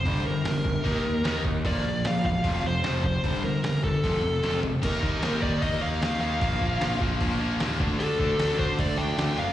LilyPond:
<<
  \new Staff \with { instrumentName = "Lead electric guitar" } { \time 4/4 \key ees \lydian \tempo 4 = 151 c''8 bes'2. r8 | d''4 f''8 f''4 c''4 c''8~ | c''8 bes'8 bes'8 a'2 r8 | bes'4. d''8 ees''8 f''4 f''8~ |
f''4. r2 r8 | a'4. c''8 d''8 g''4 f''8 | }
  \new Staff \with { instrumentName = "Distorted electric guitar" } { \clef bass \time 4/4 \key ees \lydian <g, d g>8 <g, d>8 <g, d>8 <g, d>8 <ees bes ees'>8 <ees bes>8 <ees bes ees'>8 <ees bes>8 | <bes, f bes>8 <bes, f>8 <bes, f>8 <bes, f>8 <f, c f>8 <f, c>8 <f, c f>8 <f, c>8 | <g, d g>8 <g, d>8 <g, d>8 <g, d>8 <f, c f>8 <f, c>8 <f, c f>8 <f, c>8 | <ees bes ees'>8 <ees bes ees'>8 <ees bes ees'>8 <ees bes ees'>8 <ees bes ees'>8 <ees bes ees'>8 <ees bes ees'>8 <ees bes ees'>8 |
<bes, f bes>8 <bes, f bes>8 <bes, f bes>8 <bes, f bes>8 <bes, f bes>8 <bes, f bes>8 <bes, f bes>8 <d a d'>8 | <d a d'>8 <d a d'>8 <d a d'>8 <d a d'>8 <d a d'>8 <d a d'>8 <d a d'>8 <d a d'>8 | }
  \new Staff \with { instrumentName = "Picked electric bass" } { \clef bass \time 4/4 \key ees \lydian g,,8 g,,8 g,,8 g,,8 ees,8 ees,8 ees,8 ees,8 | bes,,8 bes,,8 bes,,8 e,,8 f,,8 f,,8 f,,8 f,,8 | g,,8 g,,8 g,,8 g,,8 f,,8 f,,8 f,,8 f,,8 | ees,8 ees,8 ees,4 ees,8 ees,8 ees,8 ees,8 |
bes,,8 bes,,8 bes,,8 bes,,8 bes,,4 ees,8 d,8 | d,8 d,8 d,4 d,8 d,8 d,8 fis,,8 | }
  \new DrumStaff \with { instrumentName = "Drums" } \drummode { \time 4/4 <hho bd>4 <hho sn>8 bd8 <hho bd>4 <hho sn>8 bd8 | <hho bd>4 <hho sn>8 bd8 <hho bd>4 <hho sn>8 bd8 | <hho bd>4 <hho sn>8 bd8 <hho bd>4 <hho sn>8 tomfh8 | <cymc hho bd>8 bd8 <hho sn>8 bd8 <hho bd>4 <hho sn>4 |
<hho bd>8 bd8 <hho sn>8 bd8 <hho bd>4 <hho sn>8 bd8 | hho8 bd8 <hho sn>8 bd8 <hho bd>4 <hho sn>4 | }
>>